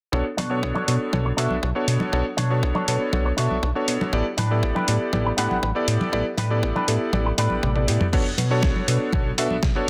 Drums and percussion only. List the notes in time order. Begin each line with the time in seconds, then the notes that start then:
0.13 kick
0.38 open hi-hat, high conga
0.63 kick
0.75 high conga
0.88 open hi-hat
1.13 kick, high conga
1.38 open hi-hat
1.50 high conga
1.63 kick
1.88 open hi-hat
2.00 high conga
2.13 kick
2.38 open hi-hat, high conga
2.63 kick
2.75 high conga
2.88 open hi-hat
3.13 kick, high conga
3.38 open hi-hat
3.51 high conga
3.63 kick
3.88 open hi-hat
4.01 high conga
4.13 kick
4.38 open hi-hat, high conga
4.63 kick
4.76 high conga
4.88 open hi-hat
5.13 kick, high conga
5.38 open hi-hat
5.51 high conga
5.63 kick
5.88 open hi-hat
6.01 high conga
6.13 kick
6.38 open hi-hat, high conga
6.63 kick
6.76 high conga
6.88 open hi-hat
7.13 kick, high conga
7.38 open hi-hat
7.50 high conga
7.63 kick, high tom
7.76 high tom
7.88 open hi-hat
8.01 mid tom, high conga
8.13 kick, crash
8.38 open hi-hat, high conga
8.63 kick, snare
8.76 high conga
8.88 open hi-hat
9.13 kick, high conga
9.38 open hi-hat
9.50 high conga
9.63 kick, snare, low conga